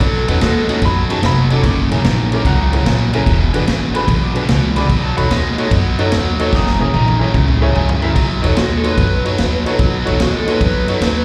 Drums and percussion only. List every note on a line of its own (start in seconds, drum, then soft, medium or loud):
0.00 kick loud
0.00 ride medium
0.28 ride medium
0.41 snare loud
0.41 ride medium
0.69 ride medium
0.82 kick loud
0.82 snare soft
0.82 ride medium
1.10 ride medium
1.23 snare loud
1.23 ride medium
1.50 ride medium
1.64 kick loud
1.64 ride medium
1.91 ride medium
2.04 snare loud
2.04 ride medium
2.32 ride medium
2.45 kick loud
2.45 ride medium
2.73 ride medium
2.86 snare loud
2.86 ride medium
3.13 ride medium
3.26 kick loud
3.26 ride medium
3.54 ride medium
3.67 snare loud
3.67 ride medium
3.95 ride medium
4.08 kick loud
4.08 ride medium
4.35 ride medium
4.49 snare loud
4.49 ride medium
4.76 ride medium
4.89 kick loud
4.89 ride medium
5.18 ride medium
5.31 snare loud
5.31 ride medium
5.58 ride medium
5.71 kick loud
5.71 snare soft
5.71 ride medium
5.99 ride medium
6.12 snare loud
6.12 ride medium
6.39 ride medium
6.53 kick loud
6.53 snare medium
6.67 snare medium
6.94 high tom medium
7.08 high tom medium
7.34 kick loud
7.34 mid tom medium
7.48 mid tom medium
7.75 floor tom medium
7.89 floor tom loud
8.02 floor tom medium
8.16 kick loud
8.16 ride medium
8.44 ride medium
8.57 snare loud
8.57 ride medium
8.84 ride medium
8.98 kick loud
8.98 ride medium
9.25 ride medium
9.38 snare loud
9.38 ride medium
9.66 ride medium
9.79 kick loud
9.79 ride medium
10.07 ride medium
10.20 snare loud
10.20 ride medium
10.47 ride medium
10.61 kick loud
10.61 ride medium
10.88 ride medium
11.02 snare loud
11.02 ride medium